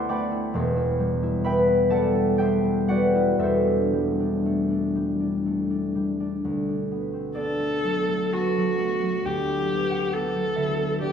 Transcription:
Already playing: D2 B3 D4 E4 B4 C5 E5 F#5 A5 C6 E6 F#6
0.09 A3 D5 G5 B5 D6
0.31 E4
0.54 E1 E2
0.76 E4
0.99 G3
1.23 E4
1.44 B3 B4 E5 G5 B5
1.68 E4
1.90 G3 A4 D5 F#5 A5
2.14 E4
2.36 B3 G4 E5 G5
2.42 C5
2.64 E4
2.87 G3 F#4 B4 D5 F#5
3.15 E4
3.38 E1 E2 A4 E5
3.43 C5
3.67 D4
3.93 G3
4.19 D4
4.46 A3
4.70 D4
4.96 G3
5.20 D4
5.46 A3
5.70 D4
5.95 G3
6.20 D4
6.44 D2
6.69 D4
6.91 B3
7.13 C4
7.35 B3 D4 A4 D5
7.59 A3
7.84 F#3
8.09 A3
8.33 B3 F#4 A4 A5
8.58 F#3
8.80 A3
9.03 F#3
9.25 D2 G4 G5
9.48 E4
9.70 B3
9.90 C4 F#4 F#5
10.13 B3 A4
10.35 F#3
10.56 D3 E4 E5
10.79 B3
11.00 F#3 D4 G4 D5

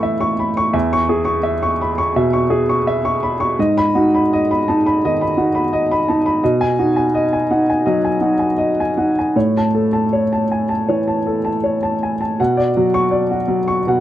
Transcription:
Already playing: E3 A4 E5 B5 C#6
0.03 E5
0.20 C#6
0.39 B5
0.57 C#6
0.73 E2 E5
0.93 C#6
1.09 G#4
1.25 C#6
1.43 E5
1.63 C#6
1.81 B5
1.98 C#6
2.16 B2 E5
2.33 C#6
2.50 G#4
2.69 C#6
2.87 E5
3.05 C#6
3.23 B5
3.40 C#6
3.59 G#2 D#5
3.77 B5
3.95 D#4 F#4
4.15 B5
4.33 D#5
4.51 B5
4.68 D#4 A5
4.86 B5
5.05 D#3 D#5
5.21 B5
5.37 D#4 F#4
5.55 B5
5.73 D#5
5.91 B5
6.08 D#4 A5
6.26 B5
6.43 B2 D#5
6.61 G#5
6.79 D#4 F#4
6.96 G#5
7.15 D#5
7.33 G#5
7.51 D#4 F#5
7.70 G#5
7.86 F#3 D#5
8.05 G#5
8.21 D#4 F#4
8.39 G#5
8.58 D#5
8.80 G#5
8.97 D#4 F#5
9.19 G#5
9.36 A2 C#5
9.57 A5
9.75 A4
9.93 A5
10.13 C#5
10.33 A5
10.52 G#5
10.69 A5
10.89 E3 C#5
11.08 A5
11.27 A4
11.45 A5
11.64 C#5
11.83 A5
12.03 G#5
12.21 A5
12.40 B2 F#5
12.57 D5
12.76 F#3 F#4
12.94 C#6
13.11 D5
13.31 F#4
13.48 F#3
13.68 C#6
13.87 B2 F#5

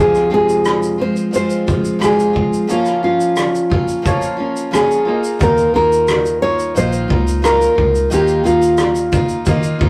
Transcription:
Already playing: F2 C3 F3
0.00 G#3 C4 F4 G#4 C5
0.15 cross-stick, shaker
0.30 F2 C3 F3 G#3 C4 F4
0.34 G#4
0.49 shaker
0.65 cross-stick, shaker
0.83 shaker
0.98 F3 G#3 C4 F4 C5
1.16 shaker
1.31 F3 G#3 C4 F4, shaker
1.35 F4 C5
1.50 shaker
1.66 F3 G#3 C4 F4, kick, shaker
1.85 shaker
1.99 F2 C3 F3 G#3 C4 F4, cross-stick, shaker
2.04 G#4
2.19 shaker
2.33 F3 G#3 C4 F4, kick
2.53 shaker
2.67 F3 A#3 C#4 F4 C#5, shaker
2.72 F4
2.85 cross-stick, shaker
3.03 F3 A#3 C#4 F4
3.20 shaker
3.36 cross-stick, shaker
3.55 shaker
3.70 C#4 F4, kick
3.74 A#3
3.88 shaker
4.02 F3 A#3 C#4 F4, kick, shaker
4.06 C#4 F4 C#5
4.22 shaker
4.37 A#3 C#4 F4
4.56 shaker
4.71 F3 A#3 C#4 F4 G#4, cross-stick, shaker
4.91 shaker
5.05 A#3 D#4 F4
5.09 D#5
5.24 shaker
5.39 D#2 D#3 A#3 D#4 F4 A#4, kick, shaker
5.57 shaker
5.74 D#2 D#3 A#3 D#4 F4 A#4
5.92 shaker
6.08 cross-stick, shaker
6.26 shaker
6.42 D#4 F4 C#5
6.46 A#3
6.59 shaker
6.75 A#1 D#3 A#3 D#4 F4 C5 D#5, shaker
6.93 shaker
7.08 C#2 A#3 D#4 F4, kick
7.28 shaker
7.42 D#3 A#3 D#4 F4 A#4, cross-stick, shaker
7.61 shaker
7.75 C#2 D#4 F4, kick
7.80 A#3
7.95 shaker
8.10 D#2 D#3 A#3 D#4 F4 G4 A#4, shaker
8.28 shaker
8.43 D#2 D#3 A#3 D#4 F4, shaker
8.62 shaker
8.78 cross-stick, shaker
8.95 shaker
9.12 A#3 D#4 F4, kick, shaker
9.29 shaker
9.45 D#3 A#3 D#4 F4 D#5, kick, shaker
9.63 shaker
9.79 D#2 A#3 D#4 F4, kick

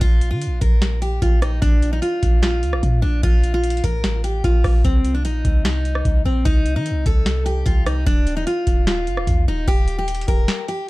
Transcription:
0.01 A#1 F4, kick, closed hi-hat
0.21 closed hi-hat
0.31 D3 F4
0.42 closed hi-hat
0.47 A#1
0.61 A#1 A#4, kick, closed hi-hat
0.82 snare, closed hi-hat
1.02 G4, closed hi-hat
1.22 A#1 F4, kick, closed hi-hat
1.42 D#4, cross-stick, closed hi-hat
1.62 A#1 D4, kick, closed hi-hat
1.82 closed hi-hat
1.93 D#4
2.02 F4, closed hi-hat
2.23 A#1, kick, closed hi-hat
2.42 F4, snare, closed hi-hat
2.63 D2, closed hi-hat
2.73 A#1, cross-stick
2.83 A#2, kick, closed hi-hat
3.02 A#1 D4
3.23 A#1 F4, kick, closed hi-hat
3.44 closed hi-hat
3.54 F4
3.64 closed hi-hat
3.70 closed hi-hat
3.77 closed hi-hat
3.84 A1 A#4, kick, closed hi-hat
4.04 snare, closed hi-hat
4.24 G4, closed hi-hat
4.44 A#1 F4, kick, closed hi-hat
4.64 A#1, kick, cross-stick, open hi-hat
4.84 C2 C4, kick, closed hi-hat
5.05 closed hi-hat
5.14 D4
5.25 A#1 D#4, closed hi-hat
5.45 C2, kick, closed hi-hat
5.65 D#4, snare, closed hi-hat
5.85 closed hi-hat
5.95 cross-stick
6.05 C2, kick, closed hi-hat
6.25 A#1 C4
6.45 C2 D#4, kick, closed hi-hat
6.66 closed hi-hat
6.76 D#3 D#4
6.86 closed hi-hat
6.91 C2
7.06 C2 A4, kick, closed hi-hat
7.26 snare, closed hi-hat
7.46 G4, closed hi-hat
7.66 C2 F4, kick, closed hi-hat
7.86 D#4, cross-stick, closed hi-hat
8.06 D#1 D4, kick, closed hi-hat
8.27 closed hi-hat
8.37 D#4
8.47 F4, closed hi-hat
8.67 D#1, kick, closed hi-hat
8.87 F4, snare, closed hi-hat
9.07 G1, closed hi-hat
9.17 D#1, cross-stick
9.27 D#2, kick, closed hi-hat
9.48 D#1 D#4
9.68 D#1 G4, kick, closed hi-hat
9.88 closed hi-hat
9.99 G4
10.08 closed hi-hat
10.15 closed hi-hat
10.21 closed hi-hat
10.28 D1 A#4, kick, closed hi-hat
10.48 snare, closed hi-hat
10.68 G4, closed hi-hat

